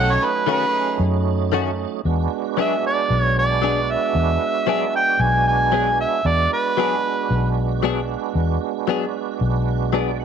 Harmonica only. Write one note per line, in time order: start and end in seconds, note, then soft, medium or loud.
0.00 0.14 F#5 loud
0.13 0.26 C#5 loud
0.24 0.48 B4 loud
0.51 1.00 B4 loud
2.60 2.84 E5 medium
2.86 3.21 D5 medium
3.21 3.34 C#5 medium
3.39 3.93 D5 medium
3.91 4.95 E5 medium
4.96 5.23 G5 loud
5.21 5.47 G#5 loud
5.48 5.96 G#5 loud
6.01 6.28 E5 medium
6.27 6.52 D5 loud
6.53 7.53 B4 medium